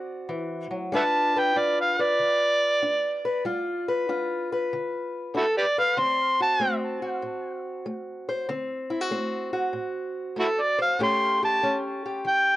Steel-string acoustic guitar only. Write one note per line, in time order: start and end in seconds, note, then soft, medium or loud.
0.00 0.25 A2 medium
0.00 0.92 C4 medium
0.00 0.90 F#4 medium
0.29 0.70 E3 medium
0.71 0.92 F#3 medium
0.92 1.51 G3 medium
0.92 1.55 D4 medium
0.92 1.56 F4 medium
0.92 1.36 B4 medium
1.36 1.99 B4 medium
1.56 2.15 D4 medium
1.56 3.43 F4 medium
1.99 3.24 B4 medium
2.19 2.78 D3 medium
2.82 3.41 D4 medium
3.25 3.43 B4 medium
3.45 4.04 G3 medium
3.45 4.08 F4 medium
3.88 4.51 B4 medium
4.09 4.67 D4 medium
4.09 5.95 F4 medium
4.52 5.77 B4 medium
4.73 5.31 D3 medium
5.35 5.93 D4 medium
5.78 5.95 B4 medium
5.97 6.56 D3 medium
5.97 6.60 C4 medium
6.40 7.02 F#4 medium
6.60 7.18 A3 medium
6.60 8.48 C4 medium
7.02 8.46 F#4 medium
7.22 7.81 A2 medium
7.86 8.44 A3 medium
8.29 8.46 C5 medium
8.49 9.07 D3 medium
8.49 9.10 C4 medium
8.90 9.01 E4 medium
9.01 9.52 F#4 soft
9.11 9.70 A3 medium
9.11 11.00 C4 medium
9.53 10.97 F#4 medium
9.73 10.32 A2 medium
10.36 10.95 A3 medium
10.79 10.97 C5 medium
10.99 11.58 A2 medium
10.99 11.62 A3 medium
10.99 11.62 C#4 medium
10.99 11.42 G4 medium
11.43 12.05 G4 medium
11.63 12.21 A3 medium
11.63 12.56 C#4 medium
12.06 12.56 G4 medium
12.25 12.56 E3 medium